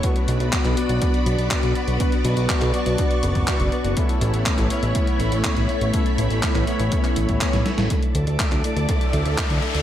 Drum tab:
HH |xxxxxxxxxxxxxxxx|xxxxxxxxxxxxxxxx|xxxxxxxxxxxxxxxx|xxxxxxxxxxxxxxxx|
CP |----xx------x---|----xx------x---|----xx------x---|----xx---x--x---|
SD |----------------|----------------|----------------|-------------ooo|
BD |o---o---o---o---|o---o---o--oo---|o---o---o---o---|o---o---o--oo---|

HH |xxxxxxxxxxxxxxxx|
CP |----xx------x---|
SD |----------------|
BD |o---o---o---o---|